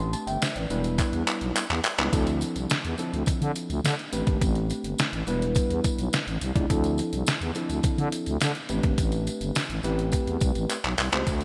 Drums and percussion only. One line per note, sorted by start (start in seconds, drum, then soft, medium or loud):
0.13 closed hi-hat medium
0.13 tambourine medium
0.27 closed hi-hat medium
0.27 tambourine soft
0.42 snare loud
0.42 closed hi-hat medium
0.42 tambourine medium
0.56 closed hi-hat medium
0.70 closed hi-hat medium
0.70 tambourine soft
0.84 closed hi-hat medium
0.84 tambourine soft
0.98 kick loud
0.98 clap medium
0.98 closed hi-hat loud
0.98 tambourine medium
1.13 closed hi-hat soft
1.27 clap medium
1.27 closed hi-hat loud
1.27 tambourine medium
1.41 closed hi-hat medium
1.56 clap medium
1.56 closed hi-hat medium
1.56 tambourine loud
1.70 clap medium
1.70 closed hi-hat soft
1.84 clap loud
1.84 open hi-hat medium
1.84 tambourine medium
1.98 clap loud
1.98 closed hi-hat medium
2.13 kick loud
2.13 closed hi-hat loud
2.13 tambourine medium
2.27 closed hi-hat soft
2.27 tambourine soft
2.41 closed hi-hat medium
2.41 tambourine medium
2.56 closed hi-hat medium
2.56 tambourine soft
2.70 snare loud
2.70 closed hi-hat medium
2.70 tambourine loud
2.85 closed hi-hat medium
2.98 closed hi-hat medium
2.98 tambourine soft
3.14 closed hi-hat soft
3.26 kick loud
3.26 closed hi-hat loud
3.26 tambourine medium
3.42 closed hi-hat soft
3.55 closed hi-hat medium
3.55 tambourine medium
3.70 closed hi-hat soft
3.70 tambourine soft
3.85 snare loud
3.85 closed hi-hat medium
3.85 tambourine loud
3.99 closed hi-hat soft
4.13 closed hi-hat medium
4.13 tambourine medium
4.27 kick loud
4.27 closed hi-hat medium
4.41 kick loud
4.41 closed hi-hat loud
4.41 tambourine medium
4.55 closed hi-hat soft
4.70 closed hi-hat medium
4.70 tambourine medium
4.84 closed hi-hat medium
4.98 snare loud
4.98 closed hi-hat medium
4.98 tambourine medium
5.13 closed hi-hat medium
5.27 closed hi-hat medium
5.27 tambourine soft
5.42 closed hi-hat medium
5.55 kick loud
5.55 closed hi-hat loud
5.55 tambourine medium
5.70 closed hi-hat medium
5.84 kick medium
5.84 closed hi-hat medium
5.84 tambourine medium
5.99 closed hi-hat soft
5.99 tambourine soft
6.13 snare loud
6.13 closed hi-hat medium
6.13 tambourine loud
6.28 closed hi-hat medium
6.41 closed hi-hat medium
6.41 tambourine medium
6.56 kick loud
6.56 closed hi-hat medium
6.70 kick loud
6.70 closed hi-hat medium
6.70 tambourine soft
6.84 closed hi-hat soft
6.84 tambourine soft
6.98 closed hi-hat medium
6.98 tambourine medium
7.13 closed hi-hat medium
7.13 tambourine soft
7.26 snare loud
7.26 closed hi-hat medium
7.26 tambourine medium
7.41 closed hi-hat medium
7.55 closed hi-hat medium
7.55 tambourine soft
7.69 closed hi-hat medium
7.69 tambourine soft
7.83 kick loud
7.83 closed hi-hat loud
7.83 tambourine medium
7.98 closed hi-hat soft
8.12 closed hi-hat medium
8.12 tambourine medium
8.26 closed hi-hat soft
8.26 tambourine soft
8.41 snare loud
8.41 closed hi-hat medium
8.41 tambourine loud
8.55 closed hi-hat soft
8.69 closed hi-hat medium
8.69 tambourine medium
8.83 kick loud
8.83 closed hi-hat medium
8.98 kick loud
8.98 closed hi-hat loud
8.98 tambourine medium
9.12 closed hi-hat soft
9.12 tambourine soft
9.27 closed hi-hat medium
9.27 tambourine medium
9.41 closed hi-hat medium
9.41 tambourine soft
9.55 snare loud
9.55 closed hi-hat medium
9.55 tambourine loud
9.70 closed hi-hat medium
9.83 closed hi-hat medium
9.83 tambourine soft
9.99 closed hi-hat soft
10.12 kick loud
10.12 closed hi-hat loud
10.12 tambourine medium
10.27 closed hi-hat soft
10.40 kick loud
10.40 closed hi-hat medium
10.40 tambourine medium
10.55 closed hi-hat soft
10.55 tambourine soft
10.70 clap medium
10.70 closed hi-hat medium
10.70 tambourine loud
10.84 clap medium
10.84 closed hi-hat soft
10.98 clap medium
10.98 open hi-hat medium
10.98 tambourine medium
11.12 clap loud
11.12 closed hi-hat medium
11.27 kick loud
11.27 closed hi-hat medium
11.27 tambourine medium
11.40 closed hi-hat soft
11.40 tambourine soft